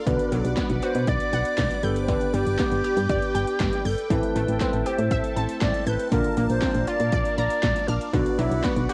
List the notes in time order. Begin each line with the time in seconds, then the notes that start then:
Already playing: D5
0.06 B1 D3 B3 D4 F#4 B4 F#5 D6, kick, closed hi-hat
0.19 closed hi-hat
0.32 B1 F#3, closed hi-hat
0.45 B1, closed hi-hat
0.57 B3, kick, snare, clap, closed hi-hat
0.70 B1, closed hi-hat
0.82 F#4 C5, closed hi-hat
0.95 B2, closed hi-hat
1.07 B1 D5, kick, closed hi-hat
1.20 closed hi-hat
1.33 B1 F#5, closed hi-hat
1.45 closed hi-hat
1.58 B1, kick, snare, clap, closed hi-hat
1.71 closed hi-hat
1.83 G1 B3 D4 G4 A4 B4 G5 G6, closed hi-hat
1.96 closed hi-hat
2.02 C5
2.08 D3 B4, kick, closed hi-hat
2.21 closed hi-hat
2.34 G1 G3 G4, closed hi-hat
2.47 G1, closed hi-hat
2.59 B3, kick, snare, clap, closed hi-hat
2.72 G1, closed hi-hat
2.84 G4, closed hi-hat
2.97 G2, closed hi-hat
3.09 G1 D5, kick, closed hi-hat
3.22 closed hi-hat
3.35 G1 G5, closed hi-hat
3.47 closed hi-hat
3.60 G1, kick, snare, clap, closed hi-hat
3.73 closed hi-hat
3.85 G1 A4 G6, open hi-hat
3.98 closed hi-hat
4.10 A1 E3 A3 C4 E4 A4 B4 E5 A5, kick, closed hi-hat
4.23 closed hi-hat
4.36 A1 A3, closed hi-hat
4.48 A1, closed hi-hat
4.60 C4 B4, kick, snare, clap, closed hi-hat
4.73 A1, closed hi-hat
4.86 G4 C5, closed hi-hat
4.98 A2, closed hi-hat
5.11 A1 E5, kick, closed hi-hat
5.24 closed hi-hat
5.36 A1 A3 C4 E4 C5 A5, closed hi-hat
5.49 closed hi-hat
5.61 A1 D5, kick, snare, clap, closed hi-hat
5.74 closed hi-hat
5.87 A1 B4 G6, closed hi-hat
5.99 closed hi-hat
6.12 A#1 D3 A#3 D4 F4 A#4 D5 F5, kick, closed hi-hat
6.24 closed hi-hat
6.37 A#1 A#3, closed hi-hat
6.50 A#1 C5, closed hi-hat
6.62 C4, kick, snare, clap, closed hi-hat
6.75 A#1, closed hi-hat
6.87 F4 D5, closed hi-hat
7.00 A#2, closed hi-hat
7.12 A#1 D5, kick, closed hi-hat
7.25 closed hi-hat
7.38 A#1 D5 A#5, closed hi-hat
7.50 closed hi-hat
7.63 A#1, kick, snare, clap, closed hi-hat
7.76 closed hi-hat
7.88 A#1 D4 F6, closed hi-hat
8.01 closed hi-hat
8.13 B1 D3 B3 D4 F#4 B4 F#5 D6, kick, closed hi-hat
8.26 closed hi-hat
8.39 B1 F#3 E4, closed hi-hat
8.51 B1, closed hi-hat
8.64 B3 F#4, kick, snare, clap, closed hi-hat
8.77 B1, closed hi-hat
8.89 F#4 G4, closed hi-hat